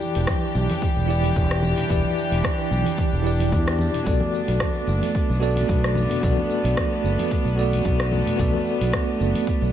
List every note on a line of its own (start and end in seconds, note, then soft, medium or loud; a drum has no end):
0.00 1.05 E3 medium
0.00 4.02 E3 medium
0.00 9.72 D4 medium
0.00 1.05 E4 medium
0.00 1.06 G4 medium
0.00 4.02 G4 medium
0.00 1.07 D5 medium
0.00 shaker medium
0.15 0.25 E1 medium
0.15 open hi-hat medium
0.15 shaker soft
0.27 kick loud
0.27 cross-stick medium
0.27 open hi-hat soft
0.27 high conga medium
0.27 shaker soft
0.55 0.66 B1 medium
0.55 shaker medium
0.70 open hi-hat medium
0.70 high conga medium
0.70 shaker soft
0.82 kick medium
0.82 open hi-hat soft
0.82 shaker soft
0.96 1.31 E1 medium
0.96 shaker soft
1.06 1.86 E3 medium
1.06 1.87 E4 medium
1.06 1.87 G4 medium
1.06 shaker medium
1.10 1.88 D5 medium
1.24 open hi-hat medium
1.24 high conga medium
1.24 shaker soft
1.36 1.72 E1 medium
1.36 kick loud
1.36 open hi-hat soft
1.36 shaker soft
1.51 cross-stick medium
1.62 high conga loud
1.62 shaker medium
1.78 open hi-hat medium
1.78 low conga medium
1.78 shaker soft
1.88 2.01 E1 medium
1.88 3.21 E3 medium
1.88 3.22 E4 medium
1.88 3.22 G4 medium
1.88 3.23 D5 medium
1.88 kick loud
1.88 open hi-hat soft
1.88 shaker soft
2.04 high conga medium
2.18 shaker medium
2.32 2.41 E1 medium
2.32 open hi-hat soft
2.32 shaker soft
2.44 kick loud
2.44 cross-stick medium
2.44 open hi-hat soft
2.44 high conga medium
2.44 shaker soft
2.60 shaker soft
2.71 2.82 B1 medium
2.71 shaker medium
2.85 open hi-hat medium
2.85 high conga medium
2.85 shaker soft
2.98 kick loud
2.98 open hi-hat soft
2.98 shaker soft
3.13 3.54 E1 medium
3.13 shaker soft
3.23 4.02 E3 medium
3.23 4.03 E4 medium
3.23 4.03 G4 medium
3.23 4.04 D5 medium
3.23 shaker medium
3.40 open hi-hat medium
3.40 high conga medium
3.40 shaker soft
3.52 3.89 E2 medium
3.52 kick loud
3.52 open hi-hat soft
3.52 shaker soft
3.68 cross-stick medium
3.68 shaker soft
3.79 high conga medium
3.79 shaker medium
3.94 open hi-hat medium
3.94 low conga medium
3.94 shaker soft
4.03 4.18 B1 medium
4.03 9.72 A3 medium
4.03 5.37 B3 medium
4.03 9.72 B3 medium
4.03 5.38 F#4 medium
4.03 5.38 A4 medium
4.03 5.39 D5 medium
4.03 kick loud
4.03 open hi-hat soft
4.08 shaker soft
4.20 high conga loud
4.34 muted conga soft
4.34 shaker medium
4.48 4.57 B1 medium
4.48 open hi-hat soft
4.48 shaker soft
4.60 kick loud
4.60 cross-stick medium
4.60 open hi-hat soft
4.60 high conga medium
4.60 shaker soft
4.87 4.99 F#1 medium
4.87 shaker medium
5.02 open hi-hat medium
5.02 high conga medium
5.02 shaker soft
5.15 kick loud
5.15 open hi-hat soft
5.15 shaker soft
5.29 5.64 B1 medium
5.29 shaker soft
5.40 6.19 B3 medium
5.40 6.19 F#4 medium
5.40 6.20 A4 medium
5.40 6.20 D5 medium
5.40 shaker medium
5.56 open hi-hat soft
5.56 high conga medium
5.56 shaker soft
5.69 6.05 B1 medium
5.69 kick loud
5.69 open hi-hat soft
5.69 shaker soft
5.84 cross-stick medium
5.95 high conga medium
5.95 shaker medium
6.10 open hi-hat medium
6.10 muted conga medium
6.10 low conga medium
6.10 shaker soft
6.20 6.34 B1 loud
6.20 7.54 B3 medium
6.20 7.55 F#4 medium
6.20 7.55 A4 medium
6.20 kick loud
6.20 open hi-hat soft
6.20 shaker soft
6.24 7.56 D5 medium
6.37 high conga medium
6.50 muted conga medium
6.50 shaker medium
6.64 6.74 B1 medium
6.64 open hi-hat medium
6.64 shaker soft
6.77 kick loud
6.77 cross-stick medium
6.77 open hi-hat soft
6.77 high conga medium
6.77 shaker soft
7.04 7.15 F#1 medium
7.04 shaker medium
7.19 open hi-hat medium
7.19 high conga medium
7.19 shaker soft
7.31 kick medium
7.31 open hi-hat soft
7.31 shaker soft
7.45 7.80 B1 medium
7.45 shaker soft
7.55 8.35 B3 medium
7.55 8.35 F#4 medium
7.55 8.36 A4 medium
7.55 8.37 D5 medium
7.55 shaker medium
7.73 open hi-hat medium
7.73 high conga medium
7.73 shaker soft
7.85 8.21 B1 loud
7.85 kick medium
7.85 open hi-hat soft
7.85 shaker soft
8.00 cross-stick medium
8.11 high conga medium
8.11 shaker medium
8.26 open hi-hat medium
8.26 low conga medium
8.26 shaker soft
8.37 8.50 B1 loud
8.37 9.70 B3 medium
8.37 9.71 F#4 medium
8.37 9.71 A4 medium
8.37 9.72 D5 medium
8.37 kick medium
8.37 open hi-hat soft
8.37 shaker soft
8.53 high conga medium
8.65 muted conga soft
8.65 shaker medium
8.81 8.90 B1 medium
8.81 open hi-hat medium
8.81 shaker soft
8.92 kick medium
8.92 cross-stick medium
8.92 open hi-hat soft
8.92 high conga medium
8.92 shaker soft
9.20 9.32 F#1 medium
9.20 shaker medium
9.34 open hi-hat medium
9.34 high conga medium
9.34 shaker soft
9.47 kick medium
9.47 open hi-hat soft
9.47 shaker soft
9.62 9.72 B1 medium
9.62 shaker soft